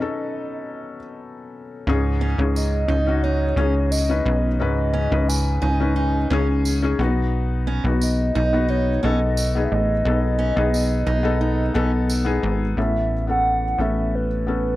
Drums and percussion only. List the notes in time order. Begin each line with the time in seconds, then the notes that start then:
2.56 tambourine
3.92 tambourine
5.29 tambourine
6.65 tambourine
8.02 tambourine
9.37 tambourine
10.74 tambourine
12.10 tambourine